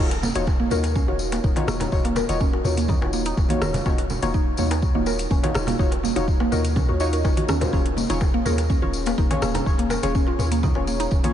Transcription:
0.00 D#1 D#4
0.11 closed hi-hat, darbuka ka
0.23 A#3, tambourine, low conga
0.35 D#1 D#4 F4 F#4 C#5, closed hi-hat, tambourine, high conga
0.47 kick, tambourine, darbuka tek
0.60 A#3
0.70 D#2 D#4 F4 F#4 A#4 C#5, tambourine, low conga
0.83 closed hi-hat, tambourine, darbuka tek
0.95 C#4, kick, tambourine
1.08 D#1 D#4 F4 F#4 C#5, high conga
1.19 tambourine
1.32 A#3, closed hi-hat, tambourine, darbuka tek
1.44 D#1 D#4, kick, tambourine, darbuka dum
1.56 D#4 F4 F#4 C#5, closed hi-hat, darbuka ka, high conga
1.68 D#1 A#3, cross-stick, tambourine, darbuka tek, darbuka dum
1.80 D#4, closed hi-hat, tambourine, darbuka ka, low conga
1.92 D#1 D#4 F4 F#4 C#5, kick, tambourine
2.05 A#3, closed hi-hat, darbuka ka
2.16 A#4, tambourine, darbuka tek, low conga
2.29 D#1 D#4 F4 F#4 C#5, closed hi-hat, tambourine, high conga
2.40 C#4, kick, tambourine
2.53 F#4, darbuka tek
2.64 D#2 D#4 F4 F#4 C#5, tambourine, darbuka dum
2.77 A#3, closed hi-hat, tambourine
2.88 D#4, kick, tambourine, high conga, low conga
3.01 D#1 D#4 F4 F#4 C#5, darbuka tek
3.13 A#3, tambourine
3.25 D#4, closed hi-hat, tambourine
3.37 D#1, kick, tambourine, darbuka tek
3.49 A#3 D#4 F4 F#4 C#5, closed hi-hat, high conga
3.62 D#1 A#4, cross-stick, tambourine, darbuka ka, high conga
3.74 closed hi-hat, tambourine, darbuka dum, low conga
3.86 D#1 C#4 D#4 F4 F#4 C#5, kick, tambourine, darbuka tek
3.98 F#4, closed hi-hat, darbuka ka
4.10 tambourine, low conga
4.22 D#1 A#3 D#4 F4 F#4 C#5, closed hi-hat, tambourine, darbuka tek, high conga
4.34 D#4, kick, tambourine
4.57 D#2 A#3 D#4 F4 F#4 C#5, tambourine, low conga
4.71 D#4, closed hi-hat, tambourine, darbuka tek
4.82 kick, tambourine
4.94 D#1 A#3 D#4 F4 F#4 C#5, high conga
5.06 A#4, tambourine, darbuka tek
5.19 closed hi-hat, tambourine
5.31 D#1 C#4, kick, tambourine, darbuka dum
5.43 D#4 F4 F#4 C#5, closed hi-hat, darbuka ka, high conga
5.55 D#1, cross-stick, tambourine, darbuka tek, darbuka dum
5.67 A#3, closed hi-hat, tambourine, darbuka ka, low conga
5.79 D#1 D#4 F4 F#4 C#5, kick, tambourine
5.92 closed hi-hat, darbuka ka, darbuka tek
6.03 A#3, tambourine, low conga
6.16 D#1 D#4 F4 F#4 C#5, closed hi-hat, tambourine, high conga
6.28 kick, tambourine
6.40 A#3, darbuka tek
6.52 D#2 D#4 F4 F#4 A#4 C#5, tambourine, darbuka dum
6.65 closed hi-hat, tambourine
6.76 C#4, kick, tambourine, high conga, darbuka tek, low conga
6.89 D#2 D#4 F4 F#4 C#5
7.00 D#4 F4 F#4 C#5 D#5, tambourine
7.13 A#4, closed hi-hat, tambourine
7.24 D#1 D#4 F4 F#4 C#5, kick, tambourine, darbuka tek
7.37 F#4, closed hi-hat, high conga
7.48 D#2 C#4, cross-stick, tambourine, darbuka ka, high conga
7.61 D#4 F4 F#4 A#4 C5, closed hi-hat, tambourine, darbuka tek, low conga, darbuka dum
7.73 D#1 C#4 D#4 F4 G#4 C#5, kick, tambourine, darbuka tek
7.86 closed hi-hat, darbuka ka
7.97 A#3, tambourine, low conga
8.09 D#1 C#4 D#4 F4 G#4 C#5, closed hi-hat, tambourine, high conga
8.21 kick, tambourine, darbuka tek
8.34 A#3
8.45 D#2 C#4 F4 G#4 A#4 C#5, tambourine, low conga
8.58 closed hi-hat, tambourine, darbuka tek
8.70 C#4, kick, tambourine
8.82 D#1 C#4 F4 G#4 C#5, high conga
8.93 tambourine
9.06 A#3, closed hi-hat, tambourine, darbuka tek
9.18 D#1 D#4, kick, tambourine, darbuka dum
9.31 C#4 F4 G#4 C#5, closed hi-hat, darbuka ka, high conga
9.42 D#1 A#3, cross-stick, tambourine, darbuka tek, darbuka dum
9.54 D#4, closed hi-hat, tambourine, darbuka ka, low conga
9.66 D#1 C#4 F4 G#4 C#5, kick, tambourine
9.78 A#3, closed hi-hat, darbuka ka
9.90 A#4, tambourine, darbuka tek, low conga
10.03 D#1 C#4 F4 G#4 C#5, closed hi-hat, tambourine, high conga
10.15 C#4, kick, tambourine
10.27 F4, darbuka tek
10.39 D#2 C#4 F4 G#4 C#5, tambourine, darbuka dum
10.51 A#3, closed hi-hat, tambourine
10.63 D#4, kick, tambourine, high conga, low conga
10.75 D#1 C#4 F4 G#4 C#5, darbuka tek
10.87 A#3, tambourine
11.00 D#4, closed hi-hat, tambourine
11.11 D#1, kick, tambourine, darbuka tek
11.24 A#3 C#4 F4 G#4 C#5, closed hi-hat, high conga

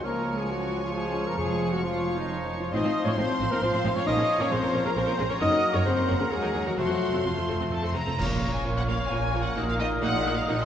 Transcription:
0.03 C#2 F3 G#3 A#3 C#4 F4 A#4 C#5 G#5 A#5 C#6
0.38 G#3 G#4 G#5
0.49 F#3 F#4 F#5
0.82 F3 F4 F5
0.94 F3 G#3 G#4 C#5 G#5
1.27 A#3 A#4 A#5
1.38 F1 F2 F3 G#3 G#4 C#5 F5 G#5
1.72 F#3 F#4 F#5
1.83 F3 F4 C#5 F5
2.17 D#3 D#4 D#5
2.61 F3 F4 F5
2.72 A1 A2 F3 C4 D#4 F4 C5 D#5 F5 C6 D#6
2.84 A2 C4 D#4
3.06 A2 C4 C#4 F4 C#5 C#6
3.16 A1 A2 F3 C4 D#4 C5 C6
3.28 A2 C4 F4
3.39 A1 A2 C4 F4
3.50 A2 A#3 C4 D#4 A#4 A#5
3.61 A1 A2 F3 C4 F4 C5 C6
3.73 A2 C4 F4
3.84 A1 A2 C4 D#4
3.95 A2 C4 C#4 F4 C#5 C#6
4.06 A#1 A#2 F3 C#4 D#4 A#4 C#5 D#5 A#5 D#6
4.18 A#2 C#4 G#4
4.40 A#2 C#4 A#4 C#5 C#6
4.51 A#1 A#2 C4 C#4 G#4 C5 C6
4.62 A#2 C#4 A#4
4.74 A#1 A#2 C#4 A#4
4.84 A#2 A#3 C#4 G#4 A#4 A#5
4.96 A#1 A#2 C4 C#4 A#4 C5 C6
5.07 A#2 C#4 A#4
5.18 A#1 A#2 C#4 G#4
5.29 A#2 C#4 A#4 C#5 C#6
5.39 F#1 F#2 F#3 A#3 C#4 D#4 A#4 D#5 F#5 D#6
5.51 F#2 C#4 G#4
5.73 F#2 C#4 A#4 C#5 C#6
5.85 F#1 F#2 C4 C#4 G#4 C5 C6
5.96 F#2 C#4 A#4
6.07 F#1 F#2 C#4 A#4
6.19 F#2 A#3 C#4 G#4 A#4 A#5
6.31 D#2 F#3 G#3 A#3 D#4 G#4 A#4 G#5
6.42 D#2 D#4 A#4
6.54 D#2 D#4 G#4
6.65 D#2 F#3 D#4 F#4 A#4 F#5
6.77 F1 F2 F3 F#3 A3 C4 F#4 A4 C5 F5 F#5 C6
6.86 F2 C4 F#4
6.90 F2
7.01 F2
7.08 F2 C4
7.13 F2 A4
7.24 F1 F2 F3 A3 C4 F4 F#4 C5 F5
7.31 F2
7.36 F2 C4 A4
7.47 F1 F2 C4 A4
7.55 F2
7.60 F2 C4 F#4
7.70 F1 F2 C4 A4 A5
7.77 F2
7.82 F2 C4 A4 C6
7.92 F1 F2 C4 F#4 A#5
7.96 F2
8.00 F2
8.06 F2 C4 A4
8.18 A#1 A#2 F3 A#3 C#4 F4 A#4 C#5 C#6, concert bass drum, crash
8.42 A#3 F4 C#5
8.55 G#5
8.65 A#1 A#2 A#3 F4 C#5
8.77 F#5
8.88 A#3 F4 C#5 F5
9.10 A#1 A#2 A#3 F4 C#5 G#5
9.34 A#3 F4 C#5
9.45 F#5
9.55 A#1 A#2 A#3 D#4 F#4 A#4 D#6
9.69 F5
9.79 A#3 D#4 F#4 A#4 D#5
10.02 A#1 A#2 A#3 D#4 F#4 A#4 D#5 F#5
10.24 A#3 D#4 F#4 A#4
10.37 F5
10.48 A#1 A#2 A#3 D#4 F#4 A#4 F#5
10.61 C6

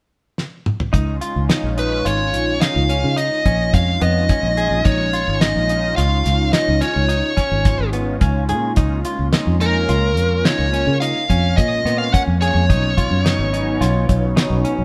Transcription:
0.38 snare
0.66 mid tom
0.80 floor tom
0.93 C#2 D#4, kick, closed hi-hat
1.21 F4, closed hi-hat
1.36 C#2
1.49 G#3 C#4 D#4 F4, snare, closed hi-hat
1.64 A#1
1.78 D#4 B4, closed hi-hat
2.05 G#1 F4 C#5, closed hi-hat
2.19 G#3 C#4 D#4 F4
2.34 A#1, closed hi-hat
2.61 D#4 F5, snare, closed hi-hat
2.76 C#2
2.89 C#4, closed hi-hat
3.04 C#3
3.16 D#4 D#5, closed hi-hat
3.45 A#1 C#4, kick, closed hi-hat
3.59 G#3 C#4 D#4 F4
3.73 F2 F5, kick, closed hi-hat
4.01 F2 B3 D#5, closed hi-hat
4.29 C#4, kick, closed hi-hat
4.43 A#1
4.57 G#4, closed hi-hat
4.71 A#1
4.85 A#1 D#4 C#5, kick, closed hi-hat
5.13 F4, closed hi-hat
5.28 G#1
5.41 G#3 C#4 D#4 F4 D#5, snare, closed hi-hat
5.55 A#1
5.69 D#4, closed hi-hat
5.96 C#2 F4 F5, snare, closed hi-hat
6.10 G#3 C#4 D#4 F4
6.26 C#2, snare, closed hi-hat
6.53 D#4 D#5, snare, closed hi-hat
6.68 C#2
6.81 C#4 C#5, snare, closed hi-hat
6.96 C#2
7.08 D#4, closed hi-hat
7.37 C#4, kick, snare, closed hi-hat
7.51 G#1 G#3 C#4 D#4 F4
7.65 kick, snare, closed hi-hat
7.79 G#1
7.93 B3, closed hi-hat
8.21 C#2 C#4, kick, closed hi-hat
8.49 A#2 G#4, closed hi-hat
8.76 C#2 D#4, kick, closed hi-hat
9.05 F4, closed hi-hat
9.19 C#2
9.33 G#3 A#3 C#4 D#4 F4, snare, closed hi-hat
9.47 F2
9.61 D#4 A#4, snare, closed hi-hat
9.89 C#2 F4, closed hi-hat
10.02 G#3 A#3 C#4 F4
10.17 F2, closed hi-hat
10.45 D#4 C#5, snare, closed hi-hat
10.59 C#2
10.73 C#4, closed hi-hat
10.87 C#3
11.00 D#4 F5, closed hi-hat
11.30 F2 C#4, kick, closed hi-hat
11.44 G#3 A#3 C#4 F4
11.56 A#2 D#5, kick, closed hi-hat
11.85 A#2 B3, snare, closed hi-hat
11.98 F5
12.13 C#4 F#5, kick, closed hi-hat
12.27 F2
12.41 G#4 C#5, closed hi-hat
12.55 F2
12.69 B1 D#4, kick, closed hi-hat
12.97 F4, kick, closed hi-hat
13.11 F#2
13.25 F#3 B3 C#4 D#4, snare, closed hi-hat
13.39 G#1
13.53 D#4, closed hi-hat
13.81 B1 F4, snare, closed hi-hat
13.95 F#3 B3 C#4 D#4
14.09 B1, kick, closed hi-hat
14.36 D#4, snare, closed hi-hat
14.50 B1
14.65 C#4, closed hi-hat
14.79 B1

